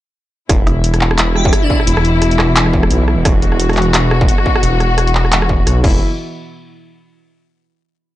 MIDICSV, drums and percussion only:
0, 0, Header, 1, 2, 480
1, 0, Start_track
1, 0, Tempo, 344828
1, 686, Time_signature, 4, 2, 24, 8
1, 11352, End_track
2, 0, Start_track
2, 0, Title_t, "Drums"
2, 688, Note_on_c, 9, 36, 124
2, 689, Note_on_c, 9, 37, 58
2, 689, Note_on_c, 9, 42, 85
2, 827, Note_off_c, 9, 36, 0
2, 828, Note_off_c, 9, 37, 0
2, 828, Note_off_c, 9, 42, 0
2, 930, Note_on_c, 9, 37, 84
2, 930, Note_on_c, 9, 42, 39
2, 1069, Note_off_c, 9, 37, 0
2, 1069, Note_off_c, 9, 42, 0
2, 1168, Note_on_c, 9, 42, 72
2, 1304, Note_off_c, 9, 42, 0
2, 1304, Note_on_c, 9, 37, 54
2, 1304, Note_on_c, 9, 42, 40
2, 1409, Note_on_c, 9, 39, 62
2, 1443, Note_off_c, 9, 37, 0
2, 1443, Note_off_c, 9, 42, 0
2, 1543, Note_on_c, 9, 37, 81
2, 1548, Note_off_c, 9, 39, 0
2, 1648, Note_on_c, 9, 39, 122
2, 1648, Note_on_c, 9, 42, 85
2, 1682, Note_off_c, 9, 37, 0
2, 1787, Note_off_c, 9, 39, 0
2, 1787, Note_off_c, 9, 42, 0
2, 1887, Note_on_c, 9, 37, 57
2, 2022, Note_on_c, 9, 36, 104
2, 2026, Note_off_c, 9, 37, 0
2, 2126, Note_on_c, 9, 37, 83
2, 2126, Note_on_c, 9, 42, 69
2, 2162, Note_off_c, 9, 36, 0
2, 2265, Note_off_c, 9, 37, 0
2, 2265, Note_off_c, 9, 42, 0
2, 2366, Note_on_c, 9, 36, 64
2, 2502, Note_on_c, 9, 37, 52
2, 2506, Note_off_c, 9, 36, 0
2, 2606, Note_on_c, 9, 42, 89
2, 2642, Note_off_c, 9, 37, 0
2, 2743, Note_on_c, 9, 37, 84
2, 2745, Note_off_c, 9, 42, 0
2, 2849, Note_on_c, 9, 42, 41
2, 2882, Note_off_c, 9, 37, 0
2, 2988, Note_off_c, 9, 42, 0
2, 3086, Note_on_c, 9, 37, 54
2, 3086, Note_on_c, 9, 42, 71
2, 3220, Note_off_c, 9, 42, 0
2, 3220, Note_on_c, 9, 42, 37
2, 3225, Note_off_c, 9, 37, 0
2, 3326, Note_on_c, 9, 37, 83
2, 3326, Note_on_c, 9, 39, 62
2, 3359, Note_off_c, 9, 42, 0
2, 3466, Note_off_c, 9, 37, 0
2, 3466, Note_off_c, 9, 39, 0
2, 3568, Note_on_c, 9, 39, 127
2, 3568, Note_on_c, 9, 42, 86
2, 3704, Note_on_c, 9, 37, 57
2, 3707, Note_off_c, 9, 39, 0
2, 3707, Note_off_c, 9, 42, 0
2, 3807, Note_on_c, 9, 36, 64
2, 3843, Note_off_c, 9, 37, 0
2, 3942, Note_on_c, 9, 37, 84
2, 3946, Note_off_c, 9, 36, 0
2, 4045, Note_on_c, 9, 42, 69
2, 4081, Note_off_c, 9, 37, 0
2, 4184, Note_off_c, 9, 42, 0
2, 4285, Note_on_c, 9, 37, 53
2, 4424, Note_off_c, 9, 37, 0
2, 4527, Note_on_c, 9, 37, 81
2, 4527, Note_on_c, 9, 42, 84
2, 4528, Note_on_c, 9, 36, 127
2, 4666, Note_off_c, 9, 37, 0
2, 4666, Note_off_c, 9, 42, 0
2, 4668, Note_off_c, 9, 36, 0
2, 4766, Note_on_c, 9, 42, 40
2, 4900, Note_on_c, 9, 37, 53
2, 4905, Note_off_c, 9, 42, 0
2, 5005, Note_on_c, 9, 42, 69
2, 5039, Note_off_c, 9, 37, 0
2, 5142, Note_off_c, 9, 42, 0
2, 5142, Note_on_c, 9, 37, 77
2, 5142, Note_on_c, 9, 42, 17
2, 5194, Note_off_c, 9, 42, 0
2, 5194, Note_on_c, 9, 42, 21
2, 5246, Note_off_c, 9, 42, 0
2, 5246, Note_on_c, 9, 39, 64
2, 5246, Note_on_c, 9, 42, 27
2, 5282, Note_off_c, 9, 37, 0
2, 5315, Note_off_c, 9, 42, 0
2, 5315, Note_on_c, 9, 42, 32
2, 5385, Note_off_c, 9, 39, 0
2, 5455, Note_off_c, 9, 42, 0
2, 5486, Note_on_c, 9, 37, 53
2, 5486, Note_on_c, 9, 39, 127
2, 5486, Note_on_c, 9, 42, 86
2, 5625, Note_off_c, 9, 37, 0
2, 5625, Note_off_c, 9, 39, 0
2, 5625, Note_off_c, 9, 42, 0
2, 5724, Note_on_c, 9, 37, 78
2, 5862, Note_on_c, 9, 36, 109
2, 5864, Note_off_c, 9, 37, 0
2, 5965, Note_on_c, 9, 42, 66
2, 6002, Note_off_c, 9, 36, 0
2, 6101, Note_on_c, 9, 37, 55
2, 6104, Note_off_c, 9, 42, 0
2, 6206, Note_on_c, 9, 36, 66
2, 6240, Note_off_c, 9, 37, 0
2, 6341, Note_on_c, 9, 37, 78
2, 6345, Note_off_c, 9, 36, 0
2, 6446, Note_on_c, 9, 42, 85
2, 6480, Note_off_c, 9, 37, 0
2, 6585, Note_off_c, 9, 42, 0
2, 6686, Note_on_c, 9, 37, 52
2, 6686, Note_on_c, 9, 42, 38
2, 6825, Note_off_c, 9, 37, 0
2, 6825, Note_off_c, 9, 42, 0
2, 6929, Note_on_c, 9, 37, 78
2, 6929, Note_on_c, 9, 42, 67
2, 7063, Note_off_c, 9, 42, 0
2, 7063, Note_on_c, 9, 42, 37
2, 7068, Note_off_c, 9, 37, 0
2, 7168, Note_on_c, 9, 39, 66
2, 7203, Note_off_c, 9, 42, 0
2, 7304, Note_on_c, 9, 37, 51
2, 7307, Note_off_c, 9, 39, 0
2, 7410, Note_on_c, 9, 39, 127
2, 7410, Note_on_c, 9, 42, 83
2, 7443, Note_off_c, 9, 37, 0
2, 7546, Note_on_c, 9, 37, 77
2, 7550, Note_off_c, 9, 39, 0
2, 7550, Note_off_c, 9, 42, 0
2, 7647, Note_on_c, 9, 36, 65
2, 7686, Note_off_c, 9, 37, 0
2, 7786, Note_off_c, 9, 36, 0
2, 7890, Note_on_c, 9, 37, 49
2, 7890, Note_on_c, 9, 42, 66
2, 8029, Note_off_c, 9, 37, 0
2, 8029, Note_off_c, 9, 42, 0
2, 8127, Note_on_c, 9, 36, 117
2, 8129, Note_on_c, 9, 49, 83
2, 8266, Note_off_c, 9, 36, 0
2, 8269, Note_off_c, 9, 49, 0
2, 11352, End_track
0, 0, End_of_file